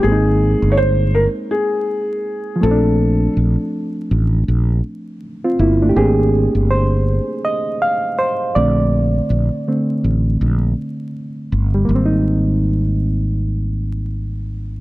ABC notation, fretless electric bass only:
X:1
M:4/4
L:1/16
Q:"Swing 16ths" 1/4=81
K:Ab
V:1 name="Fretless electric bass" clef=bass
A,,,3 G,,,4 z6 z B,,,2- | B,,,2 B,,, z3 =A,,,2 B,,,2 z4 G,,,2 | A,,,3 G,,,4 z6 z B,,,2- | B,,,2 B,,, z3 =A,,,2 B,,,2 z4 G,,,2 |
A,,,16 |]